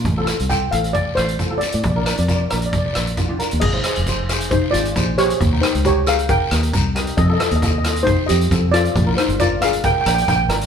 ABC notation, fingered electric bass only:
X:1
M:4/4
L:1/16
Q:1/4=135
K:Ablyd
V:1 name="Fingered electric bass" clef=bass
=A,,,3 C,,3 A,,,4 A,,,4- A,,, =A,, | B,,,3 F,,3 B,,,4 B,,,4- B,,, E,, | A,,,2 z F,,,6- F,,, A,,,2 B,,,4 | E,,2 z _D,,6- D,, E,,2 C,,4 |
F,,2 z E,,6- E,, F,,2 F,,4 | B,,,2 z G,,,6- G,,, B,,,2 B,,,2 A,,,2 |]